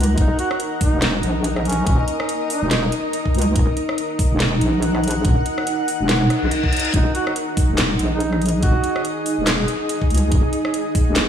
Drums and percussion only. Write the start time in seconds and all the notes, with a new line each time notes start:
0.00 closed hi-hat
0.03 closed hi-hat
0.18 kick, closed hi-hat
0.39 closed hi-hat
0.51 cross-stick
0.60 closed hi-hat
0.81 kick, open hi-hat
1.02 snare, closed hi-hat
1.23 closed hi-hat
1.44 closed hi-hat
1.56 cross-stick
1.65 closed hi-hat
1.69 closed hi-hat
1.72 closed hi-hat
1.87 kick, closed hi-hat
2.08 closed hi-hat
2.20 cross-stick
2.29 closed hi-hat
2.50 open hi-hat
2.71 snare, closed hi-hat
2.92 closed hi-hat
3.13 closed hi-hat
3.26 kick
3.35 closed hi-hat
3.38 closed hi-hat
3.42 closed hi-hat
3.56 kick, closed hi-hat
3.77 closed hi-hat
3.89 cross-stick
3.98 closed hi-hat
4.19 kick, open hi-hat
4.40 snare, closed hi-hat
4.61 closed hi-hat
4.82 closed hi-hat
4.95 cross-stick
5.04 closed hi-hat
5.08 closed hi-hat
5.11 closed hi-hat
5.25 kick, closed hi-hat
5.46 closed hi-hat
5.58 cross-stick
5.67 closed hi-hat
5.88 open hi-hat
6.09 snare, closed hi-hat
6.30 cross-stick, closed hi-hat
6.51 closed hi-hat
6.64 kick
6.73 closed hi-hat
6.77 closed hi-hat
6.80 closed hi-hat
6.85 closed hi-hat
6.94 kick, closed hi-hat
7.15 closed hi-hat
7.27 cross-stick
7.36 closed hi-hat
7.57 kick, open hi-hat
7.78 snare, clap, closed hi-hat
7.99 closed hi-hat
8.20 closed hi-hat
8.33 cross-stick
8.42 closed hi-hat
8.46 closed hi-hat
8.49 closed hi-hat
8.63 kick, closed hi-hat
8.84 closed hi-hat
8.96 cross-stick
9.05 closed hi-hat
9.26 open hi-hat
9.47 snare, clap, closed hi-hat
9.68 closed hi-hat
9.89 closed hi-hat
10.02 kick
10.10 closed hi-hat
10.14 closed hi-hat
10.18 closed hi-hat
10.32 kick, closed hi-hat
10.53 closed hi-hat
10.65 cross-stick
10.74 closed hi-hat
10.95 kick, open hi-hat
11.16 snare, clap, closed hi-hat